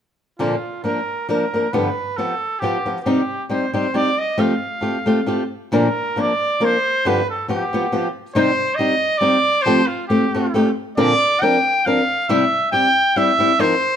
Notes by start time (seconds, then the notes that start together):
0.39 A#2 D3 F3 A#3 D4 F4 A#4
0.84 F3 A#3 D4 A#4
1.29 F3 A#3 D4 A#4
1.53 F3 A#3 D4 A#4
1.73 G2 D3 F3 B3 F4 G4 B4
2.17 F3 B3 F4 G4 A4
2.59 F3 B3 G4
2.64 F4 G4
2.86 F3 B3 F4 G4
3.03 C3 G3 C4 D#4 G4
3.07 G4
3.49 G3 C4 D#4 G4 C5
3.73 G3 C4 D#4 G4 C5
3.94 G3 C4 D#4 G4 D5
4.18 D#5
4.38 F3 A3 C4 F4 G4 F5
4.81 A3 C4 F4 G4
5.06 A3 C4 F4 G4
5.26 A3 C4 F4 G4
5.72 A#2 D3 F3 A#3 D4 A#4
6.16 F3 A#3 D4 A#4 D5
6.60 F3 A#3 D4 A#4
6.64 C5
7.05 G2 D3 F3 B3 F4 G4 B4
7.30 A4
7.48 F3 B3 F4 G4
7.73 F3 B3 F4 G4
7.92 F3 B3 F4 G4
8.34 C3 G3 C4 D#4 G4 C5
8.75 G3 D#5
8.80 C4 D#4 G4
9.18 G3 C4 D5
9.22 D#4 G4
9.62 F3 C5
9.66 A3 C4 F4 G4
9.86 F4
10.07 A3 C4 F4 G4
10.34 A3 C4 F4 G4
10.54 A3 C4 F4 G4
10.97 A#2 D3 F3 C4 D4 A#4 D5
11.41 F3 C4 D4 A#4 G5
11.86 F3 C4 D4 A#4 F5
12.29 C3 G3 C4 E4 G4 E5
12.72 G3 C4 E4 G4 G5
13.16 G3 C4 E4 G4 E5
13.39 G3 C4 E4 G4
13.59 F3 C4 D#4 A#4 C5